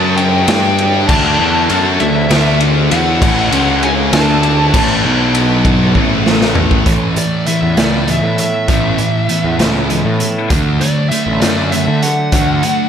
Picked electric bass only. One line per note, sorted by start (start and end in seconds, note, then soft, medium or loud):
0.00 0.44 F#2 loud
0.48 1.05 G2 medium
1.09 1.37 D2 medium
1.39 1.68 E2 medium
1.70 1.99 F#2 loud
2.00 2.29 D2 medium
2.30 2.88 D2 medium
2.92 3.20 E2 medium
3.22 3.50 A1 loud
3.52 4.09 C#2 medium
4.13 4.70 D2 medium
4.74 5.02 A1 medium
5.05 5.92 B1 loud
5.95 6.83 A1 medium
6.86 7.15 A1 loud
7.62 7.77 E2 medium
7.77 8.21 C#2 medium
8.23 8.66 A2 medium
8.69 8.97 A1 loud
9.44 9.58 E2 medium
9.59 10.02 C#2 medium
10.05 10.48 A2 medium
10.50 10.79 D2 loud
11.26 11.41 A1 medium
11.42 11.85 F#2 medium
11.88 12.30 D3 medium
12.33 12.61 D2 medium